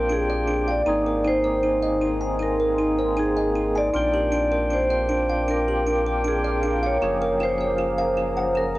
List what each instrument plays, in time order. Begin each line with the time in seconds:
Already playing: sub bass A#1, tonewheel organ C4 D4 F4 G5, vibraphone A#4, ambient pad A#4 F5 G5 D6
0.09 music box D4, vibraphone G#4
0.30 music box D5
0.47 music box D4
0.68 vibraphone D5, music box F5
0.86 sub bass G#1, tonewheel organ A#3 C4 D#4 G#4, ambient pad D#4 G#5 C6, music box D#4
1.06 music box A#4
1.24 music box D#4, vibraphone C5
1.44 music box C5
1.63 music box D#4
1.82 music box D#5
2.01 music box D#4
2.21 music box G#5
2.39 music box D#4, vibraphone A#4
2.60 music box A#4
2.78 music box D#4
2.99 music box C5
3.17 music box D#4, vibraphone G#4
3.37 music box D#5
3.55 music box D#4
3.75 vibraphone D5, music box G#5
3.94 sub bass A#1, tonewheel organ C4 D4 F4 G5, music box D4, ambient pad F5 G5 D6
4.14 music box G4
4.32 music box D4
4.52 music box A#4
4.70 music box D4, vibraphone C5
4.90 music box D5
5.09 music box D4
5.29 music box F5
5.48 music box D4, vibraphone A#4
5.68 music box G4
5.87 music box D4
6.06 music box A#4
6.24 music box D4, vibraphone G#4
6.44 music box D5
6.63 music box D4
6.83 vibraphone C#5, music box F5
7.01 sub bass F#1, tonewheel organ F3 A#3 C#4 G#4, music box F4, ambient pad A#5
7.22 music box A#4
7.40 music box F4, vibraphone C5
7.49 vibraphone C#5
7.58 vibraphone C5, music box C#5
7.78 music box F4
7.98 music box F5
8.17 music box F4
8.37 music box F#5
8.55 music box F4, vibraphone A#4
8.75 music box A#4